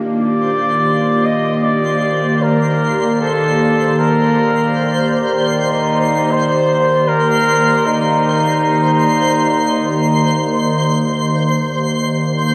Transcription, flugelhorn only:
0.07 D5
1.25 D#5
1.63 D5
2.42 A#4
3.21 A4
3.99 A#4
5.54 D#4
6.32 C5
7.08 A#4
7.87 D#4

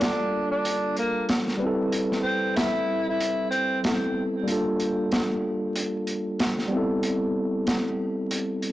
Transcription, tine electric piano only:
Already playing: G3 A#3 D4 F4 A4
1.57 G3 B4
1.62 C4 E4
1.67 A4
3.83 G3 B3 C4 E4
3.88 A4
4.43 G3 A#3
4.47 D4 F4
4.52 A4
6.68 G3 B3
6.72 C4 E4
6.77 A4

